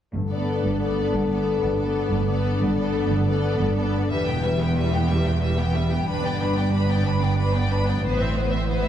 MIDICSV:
0, 0, Header, 1, 8, 480
1, 0, Start_track
1, 0, Key_signature, 1, "major"
1, 0, Tempo, 330396
1, 214, Time_signature, 12, 3, 24, 8
1, 6931, Tempo, 326619
1, 12976, End_track
2, 0, Start_track
2, 0, Title_t, "Violin section"
2, 0, Program_c, 0, 48
2, 447, Note_on_c, 0, 74, 27
2, 1159, Note_off_c, 0, 74, 0
2, 1175, Note_on_c, 0, 74, 29
2, 1879, Note_off_c, 0, 74, 0
2, 1898, Note_on_c, 0, 74, 29
2, 2585, Note_off_c, 0, 74, 0
2, 2602, Note_on_c, 0, 74, 31
2, 3305, Note_off_c, 0, 74, 0
2, 3324, Note_on_c, 0, 74, 34
2, 4007, Note_off_c, 0, 74, 0
2, 4025, Note_on_c, 0, 74, 35
2, 4729, Note_off_c, 0, 74, 0
2, 4745, Note_on_c, 0, 74, 39
2, 5454, Note_off_c, 0, 74, 0
2, 5472, Note_on_c, 0, 74, 35
2, 5955, Note_off_c, 0, 74, 0
2, 5976, Note_on_c, 0, 76, 37
2, 6196, Note_off_c, 0, 76, 0
2, 6202, Note_on_c, 0, 79, 32
2, 6446, Note_off_c, 0, 79, 0
2, 6453, Note_on_c, 0, 76, 31
2, 6693, Note_off_c, 0, 76, 0
2, 6697, Note_on_c, 0, 79, 35
2, 6934, Note_off_c, 0, 79, 0
2, 6952, Note_on_c, 0, 76, 30
2, 7167, Note_off_c, 0, 76, 0
2, 7186, Note_on_c, 0, 79, 30
2, 7414, Note_on_c, 0, 76, 32
2, 7420, Note_off_c, 0, 79, 0
2, 7656, Note_off_c, 0, 76, 0
2, 7660, Note_on_c, 0, 79, 29
2, 7891, Note_on_c, 0, 76, 31
2, 7899, Note_off_c, 0, 79, 0
2, 8118, Note_off_c, 0, 76, 0
2, 8129, Note_on_c, 0, 79, 30
2, 8356, Note_on_c, 0, 76, 31
2, 8374, Note_off_c, 0, 79, 0
2, 8608, Note_off_c, 0, 76, 0
2, 8608, Note_on_c, 0, 79, 33
2, 8853, Note_off_c, 0, 79, 0
2, 8865, Note_on_c, 0, 83, 37
2, 9086, Note_off_c, 0, 83, 0
2, 9113, Note_on_c, 0, 79, 33
2, 9345, Note_on_c, 0, 83, 31
2, 9347, Note_off_c, 0, 79, 0
2, 9582, Note_off_c, 0, 83, 0
2, 9586, Note_on_c, 0, 79, 36
2, 9823, Note_off_c, 0, 79, 0
2, 9824, Note_on_c, 0, 83, 32
2, 10045, Note_off_c, 0, 83, 0
2, 10066, Note_on_c, 0, 79, 33
2, 10302, Note_off_c, 0, 79, 0
2, 10317, Note_on_c, 0, 83, 37
2, 10547, Note_off_c, 0, 83, 0
2, 10550, Note_on_c, 0, 79, 33
2, 10771, Note_on_c, 0, 83, 29
2, 10783, Note_off_c, 0, 79, 0
2, 10997, Note_off_c, 0, 83, 0
2, 11021, Note_on_c, 0, 79, 32
2, 11258, Note_off_c, 0, 79, 0
2, 11266, Note_on_c, 0, 83, 35
2, 11488, Note_on_c, 0, 79, 31
2, 11501, Note_off_c, 0, 83, 0
2, 11732, Note_off_c, 0, 79, 0
2, 11740, Note_on_c, 0, 72, 36
2, 11961, Note_off_c, 0, 72, 0
2, 11965, Note_on_c, 0, 76, 33
2, 12187, Note_on_c, 0, 72, 33
2, 12210, Note_off_c, 0, 76, 0
2, 12435, Note_on_c, 0, 76, 34
2, 12440, Note_off_c, 0, 72, 0
2, 12673, Note_on_c, 0, 72, 36
2, 12683, Note_off_c, 0, 76, 0
2, 12904, Note_off_c, 0, 72, 0
2, 12909, Note_on_c, 0, 76, 33
2, 12976, Note_off_c, 0, 76, 0
2, 12976, End_track
3, 0, Start_track
3, 0, Title_t, "Violin section"
3, 0, Program_c, 1, 48
3, 449, Note_on_c, 1, 69, 27
3, 1160, Note_off_c, 1, 69, 0
3, 1183, Note_on_c, 1, 69, 28
3, 1882, Note_off_c, 1, 69, 0
3, 1906, Note_on_c, 1, 69, 31
3, 2585, Note_off_c, 1, 69, 0
3, 2603, Note_on_c, 1, 69, 31
3, 3293, Note_off_c, 1, 69, 0
3, 3311, Note_on_c, 1, 69, 34
3, 4014, Note_off_c, 1, 69, 0
3, 4037, Note_on_c, 1, 69, 39
3, 4736, Note_off_c, 1, 69, 0
3, 4755, Note_on_c, 1, 69, 38
3, 5451, Note_off_c, 1, 69, 0
3, 5469, Note_on_c, 1, 69, 35
3, 5954, Note_off_c, 1, 69, 0
3, 5972, Note_on_c, 1, 71, 39
3, 6194, Note_off_c, 1, 71, 0
3, 6208, Note_on_c, 1, 67, 33
3, 6450, Note_off_c, 1, 67, 0
3, 6451, Note_on_c, 1, 71, 28
3, 6684, Note_on_c, 1, 67, 31
3, 6692, Note_off_c, 1, 71, 0
3, 6924, Note_on_c, 1, 71, 33
3, 6928, Note_off_c, 1, 67, 0
3, 7151, Note_on_c, 1, 67, 31
3, 7152, Note_off_c, 1, 71, 0
3, 7395, Note_on_c, 1, 71, 29
3, 7403, Note_off_c, 1, 67, 0
3, 7646, Note_off_c, 1, 71, 0
3, 7646, Note_on_c, 1, 67, 31
3, 7872, Note_on_c, 1, 71, 32
3, 7893, Note_off_c, 1, 67, 0
3, 8107, Note_off_c, 1, 71, 0
3, 8129, Note_on_c, 1, 67, 31
3, 8374, Note_off_c, 1, 67, 0
3, 8376, Note_on_c, 1, 71, 29
3, 8613, Note_on_c, 1, 67, 31
3, 8617, Note_off_c, 1, 71, 0
3, 8856, Note_off_c, 1, 67, 0
3, 8857, Note_on_c, 1, 71, 38
3, 9082, Note_off_c, 1, 71, 0
3, 9093, Note_on_c, 1, 74, 33
3, 9321, Note_on_c, 1, 71, 29
3, 9337, Note_off_c, 1, 74, 0
3, 9560, Note_on_c, 1, 74, 32
3, 9571, Note_off_c, 1, 71, 0
3, 9787, Note_on_c, 1, 71, 35
3, 9810, Note_off_c, 1, 74, 0
3, 10025, Note_off_c, 1, 71, 0
3, 10045, Note_on_c, 1, 74, 31
3, 10283, Note_on_c, 1, 71, 29
3, 10291, Note_off_c, 1, 74, 0
3, 10512, Note_on_c, 1, 74, 32
3, 10529, Note_off_c, 1, 71, 0
3, 10764, Note_off_c, 1, 74, 0
3, 10767, Note_on_c, 1, 71, 32
3, 10994, Note_off_c, 1, 71, 0
3, 11005, Note_on_c, 1, 74, 32
3, 11250, Note_off_c, 1, 74, 0
3, 11258, Note_on_c, 1, 71, 33
3, 11497, Note_off_c, 1, 71, 0
3, 11498, Note_on_c, 1, 74, 33
3, 11737, Note_off_c, 1, 74, 0
3, 11749, Note_on_c, 1, 71, 42
3, 11966, Note_off_c, 1, 71, 0
3, 11980, Note_on_c, 1, 72, 36
3, 12214, Note_on_c, 1, 71, 30
3, 12217, Note_off_c, 1, 72, 0
3, 12444, Note_on_c, 1, 72, 32
3, 12454, Note_off_c, 1, 71, 0
3, 12674, Note_on_c, 1, 71, 35
3, 12688, Note_off_c, 1, 72, 0
3, 12905, Note_off_c, 1, 71, 0
3, 12917, Note_on_c, 1, 72, 34
3, 12976, Note_off_c, 1, 72, 0
3, 12976, End_track
4, 0, Start_track
4, 0, Title_t, "French horn section"
4, 0, Program_c, 2, 60
4, 205, Note_on_c, 2, 69, 31
4, 208, Note_on_c, 2, 59, 31
4, 5662, Note_off_c, 2, 69, 0
4, 5663, Note_off_c, 2, 59, 0
4, 12976, End_track
5, 0, Start_track
5, 0, Title_t, "Harp"
5, 0, Program_c, 3, 46
5, 210, Note_on_c, 3, 43, 30
5, 456, Note_on_c, 3, 57, 25
5, 697, Note_on_c, 3, 62, 25
5, 932, Note_on_c, 3, 71, 29
5, 1160, Note_off_c, 3, 62, 0
5, 1178, Note_on_c, 3, 62, 24
5, 1400, Note_off_c, 3, 57, 0
5, 1417, Note_on_c, 3, 57, 23
5, 1653, Note_on_c, 3, 50, 27
5, 1871, Note_off_c, 3, 57, 0
5, 1889, Note_on_c, 3, 57, 27
5, 2110, Note_off_c, 3, 62, 0
5, 2128, Note_on_c, 3, 62, 27
5, 2348, Note_off_c, 3, 71, 0
5, 2365, Note_on_c, 3, 71, 29
5, 2587, Note_off_c, 3, 62, 0
5, 2605, Note_on_c, 3, 62, 26
5, 2833, Note_off_c, 3, 57, 0
5, 2850, Note_on_c, 3, 57, 28
5, 3068, Note_off_c, 3, 43, 0
5, 3085, Note_on_c, 3, 43, 38
5, 3300, Note_off_c, 3, 50, 0
5, 3318, Note_on_c, 3, 50, 32
5, 3535, Note_off_c, 3, 62, 0
5, 3552, Note_on_c, 3, 62, 29
5, 3772, Note_off_c, 3, 71, 0
5, 3790, Note_on_c, 3, 71, 34
5, 4015, Note_off_c, 3, 62, 0
5, 4032, Note_on_c, 3, 62, 35
5, 4247, Note_off_c, 3, 57, 0
5, 4265, Note_on_c, 3, 57, 33
5, 4487, Note_off_c, 3, 50, 0
5, 4505, Note_on_c, 3, 50, 33
5, 4731, Note_off_c, 3, 57, 0
5, 4749, Note_on_c, 3, 57, 37
5, 4964, Note_off_c, 3, 62, 0
5, 4982, Note_on_c, 3, 62, 31
5, 5205, Note_off_c, 3, 71, 0
5, 5223, Note_on_c, 3, 71, 38
5, 5455, Note_off_c, 3, 62, 0
5, 5472, Note_on_c, 3, 62, 29
5, 5703, Note_off_c, 3, 57, 0
5, 5720, Note_on_c, 3, 57, 32
5, 5968, Note_on_c, 3, 40, 34
5, 5985, Note_off_c, 3, 50, 0
5, 5985, Note_off_c, 3, 62, 0
5, 5986, Note_off_c, 3, 57, 0
5, 5988, Note_off_c, 3, 43, 0
5, 6203, Note_on_c, 3, 47, 27
5, 6441, Note_on_c, 3, 67, 29
5, 6668, Note_off_c, 3, 71, 0
5, 6685, Note_on_c, 3, 71, 31
5, 6912, Note_off_c, 3, 67, 0
5, 6930, Note_on_c, 3, 67, 29
5, 7176, Note_on_c, 3, 59, 30
5, 7404, Note_off_c, 3, 40, 0
5, 7421, Note_on_c, 3, 40, 34
5, 7642, Note_off_c, 3, 47, 0
5, 7660, Note_on_c, 3, 47, 28
5, 7885, Note_off_c, 3, 67, 0
5, 7903, Note_on_c, 3, 67, 27
5, 8122, Note_off_c, 3, 71, 0
5, 8139, Note_on_c, 3, 71, 31
5, 8366, Note_off_c, 3, 67, 0
5, 8383, Note_on_c, 3, 67, 28
5, 8612, Note_off_c, 3, 59, 0
5, 8629, Note_on_c, 3, 59, 28
5, 8865, Note_on_c, 3, 43, 32
5, 8880, Note_off_c, 3, 47, 0
5, 8882, Note_off_c, 3, 40, 0
5, 9113, Note_on_c, 3, 50, 26
5, 9335, Note_off_c, 3, 67, 0
5, 9353, Note_on_c, 3, 67, 29
5, 9573, Note_off_c, 3, 71, 0
5, 9590, Note_on_c, 3, 71, 33
5, 9794, Note_off_c, 3, 67, 0
5, 9811, Note_on_c, 3, 67, 32
5, 10036, Note_off_c, 3, 59, 0
5, 10269, Note_off_c, 3, 43, 0
5, 10287, Note_on_c, 3, 43, 37
5, 10519, Note_off_c, 3, 50, 0
5, 10536, Note_on_c, 3, 50, 31
5, 10756, Note_off_c, 3, 67, 0
5, 10774, Note_on_c, 3, 67, 29
5, 11010, Note_off_c, 3, 71, 0
5, 11028, Note_on_c, 3, 71, 35
5, 11245, Note_off_c, 3, 67, 0
5, 11262, Note_on_c, 3, 67, 30
5, 11497, Note_on_c, 3, 59, 29
5, 11747, Note_on_c, 3, 45, 36
5, 11750, Note_off_c, 3, 43, 0
5, 11755, Note_off_c, 3, 50, 0
5, 11759, Note_off_c, 3, 67, 0
5, 11982, Note_on_c, 3, 52, 29
5, 12224, Note_on_c, 3, 64, 31
5, 12444, Note_off_c, 3, 71, 0
5, 12462, Note_on_c, 3, 71, 36
5, 12684, Note_off_c, 3, 64, 0
5, 12701, Note_on_c, 3, 64, 36
5, 12976, Note_off_c, 3, 45, 0
5, 12976, Note_off_c, 3, 52, 0
5, 12976, Note_off_c, 3, 59, 0
5, 12976, Note_off_c, 3, 64, 0
5, 12976, Note_off_c, 3, 71, 0
5, 12976, End_track
6, 0, Start_track
6, 0, Title_t, "Viola section"
6, 0, Program_c, 4, 48
6, 453, Note_on_c, 4, 59, 27
6, 1162, Note_off_c, 4, 59, 0
6, 1180, Note_on_c, 4, 59, 31
6, 1881, Note_off_c, 4, 59, 0
6, 1898, Note_on_c, 4, 59, 30
6, 2588, Note_off_c, 4, 59, 0
6, 2606, Note_on_c, 4, 59, 32
6, 3307, Note_off_c, 4, 59, 0
6, 3329, Note_on_c, 4, 59, 33
6, 4002, Note_off_c, 4, 59, 0
6, 4020, Note_on_c, 4, 59, 38
6, 4727, Note_off_c, 4, 59, 0
6, 4762, Note_on_c, 4, 59, 38
6, 5465, Note_off_c, 4, 59, 0
6, 5482, Note_on_c, 4, 59, 36
6, 5961, Note_off_c, 4, 59, 0
6, 5972, Note_on_c, 4, 55, 32
6, 6194, Note_off_c, 4, 55, 0
6, 6226, Note_on_c, 4, 59, 32
6, 6448, Note_on_c, 4, 55, 31
6, 6458, Note_off_c, 4, 59, 0
6, 6690, Note_off_c, 4, 55, 0
6, 6692, Note_on_c, 4, 59, 32
6, 6932, Note_off_c, 4, 59, 0
6, 6938, Note_on_c, 4, 55, 33
6, 7159, Note_off_c, 4, 55, 0
6, 7192, Note_on_c, 4, 59, 29
6, 7422, Note_on_c, 4, 55, 31
6, 7423, Note_off_c, 4, 59, 0
6, 7660, Note_off_c, 4, 55, 0
6, 7667, Note_on_c, 4, 59, 31
6, 7903, Note_off_c, 4, 59, 0
6, 7906, Note_on_c, 4, 55, 31
6, 8125, Note_off_c, 4, 55, 0
6, 8138, Note_on_c, 4, 59, 37
6, 8379, Note_off_c, 4, 59, 0
6, 8385, Note_on_c, 4, 55, 33
6, 8622, Note_off_c, 4, 55, 0
6, 8626, Note_on_c, 4, 59, 34
6, 8862, Note_off_c, 4, 59, 0
6, 8863, Note_on_c, 4, 62, 34
6, 9085, Note_off_c, 4, 62, 0
6, 9088, Note_on_c, 4, 59, 32
6, 9335, Note_off_c, 4, 59, 0
6, 9345, Note_on_c, 4, 62, 31
6, 9561, Note_on_c, 4, 59, 34
6, 9583, Note_off_c, 4, 62, 0
6, 9802, Note_on_c, 4, 62, 30
6, 9810, Note_off_c, 4, 59, 0
6, 10033, Note_off_c, 4, 62, 0
6, 10052, Note_on_c, 4, 59, 30
6, 10280, Note_on_c, 4, 62, 32
6, 10295, Note_off_c, 4, 59, 0
6, 10528, Note_off_c, 4, 62, 0
6, 10533, Note_on_c, 4, 59, 31
6, 10764, Note_on_c, 4, 62, 32
6, 10774, Note_off_c, 4, 59, 0
6, 10993, Note_off_c, 4, 62, 0
6, 11010, Note_on_c, 4, 59, 35
6, 11253, Note_off_c, 4, 59, 0
6, 11262, Note_on_c, 4, 62, 32
6, 11499, Note_off_c, 4, 62, 0
6, 11508, Note_on_c, 4, 59, 36
6, 11730, Note_off_c, 4, 59, 0
6, 11748, Note_on_c, 4, 59, 38
6, 11966, Note_off_c, 4, 59, 0
6, 11992, Note_on_c, 4, 60, 33
6, 12212, Note_on_c, 4, 59, 31
6, 12224, Note_off_c, 4, 60, 0
6, 12445, Note_on_c, 4, 60, 35
6, 12452, Note_off_c, 4, 59, 0
6, 12688, Note_off_c, 4, 60, 0
6, 12698, Note_on_c, 4, 59, 34
6, 12918, Note_off_c, 4, 59, 0
6, 12929, Note_on_c, 4, 60, 33
6, 12976, Note_off_c, 4, 60, 0
6, 12976, End_track
7, 0, Start_track
7, 0, Title_t, "Cello section"
7, 0, Program_c, 5, 48
7, 205, Note_on_c, 5, 43, 37
7, 816, Note_off_c, 5, 43, 0
7, 933, Note_on_c, 5, 43, 33
7, 1535, Note_off_c, 5, 43, 0
7, 1635, Note_on_c, 5, 43, 38
7, 2245, Note_off_c, 5, 43, 0
7, 2353, Note_on_c, 5, 43, 40
7, 2958, Note_off_c, 5, 43, 0
7, 3074, Note_on_c, 5, 43, 45
7, 3675, Note_off_c, 5, 43, 0
7, 3798, Note_on_c, 5, 43, 47
7, 4394, Note_off_c, 5, 43, 0
7, 4503, Note_on_c, 5, 43, 52
7, 5111, Note_off_c, 5, 43, 0
7, 5237, Note_on_c, 5, 43, 49
7, 5852, Note_off_c, 5, 43, 0
7, 5964, Note_on_c, 5, 40, 39
7, 8798, Note_off_c, 5, 40, 0
7, 8871, Note_on_c, 5, 43, 43
7, 11685, Note_off_c, 5, 43, 0
7, 11741, Note_on_c, 5, 45, 41
7, 12976, Note_off_c, 5, 45, 0
7, 12976, End_track
8, 0, Start_track
8, 0, Title_t, "Double bass section"
8, 0, Program_c, 6, 48
8, 199, Note_on_c, 6, 31, 38
8, 813, Note_off_c, 6, 31, 0
8, 921, Note_on_c, 6, 31, 34
8, 1529, Note_off_c, 6, 31, 0
8, 1652, Note_on_c, 6, 31, 40
8, 2254, Note_off_c, 6, 31, 0
8, 2373, Note_on_c, 6, 31, 38
8, 2969, Note_off_c, 6, 31, 0
8, 3080, Note_on_c, 6, 31, 49
8, 3678, Note_off_c, 6, 31, 0
8, 3787, Note_on_c, 6, 31, 49
8, 4388, Note_off_c, 6, 31, 0
8, 4508, Note_on_c, 6, 31, 53
8, 5113, Note_off_c, 6, 31, 0
8, 5221, Note_on_c, 6, 31, 52
8, 5843, Note_off_c, 6, 31, 0
8, 5972, Note_on_c, 6, 28, 41
8, 8802, Note_off_c, 6, 28, 0
8, 8861, Note_on_c, 6, 31, 41
8, 11680, Note_off_c, 6, 31, 0
8, 11743, Note_on_c, 6, 33, 43
8, 12976, Note_off_c, 6, 33, 0
8, 12976, End_track
0, 0, End_of_file